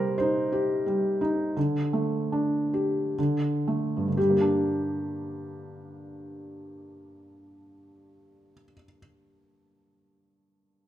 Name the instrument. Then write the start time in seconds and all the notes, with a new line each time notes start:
felt piano
Already playing: C3 G3 A#4 C5
0.18 D#4 C5
0.52 G4
0.86 G3
1.21 D#4
1.56 D3
1.93 A3
2.32 D4
2.74 G4
3.18 D3
3.68 A3
3.97 G2
4.08 D3
4.17 G3 G4
4.30 A#3
4.41 D4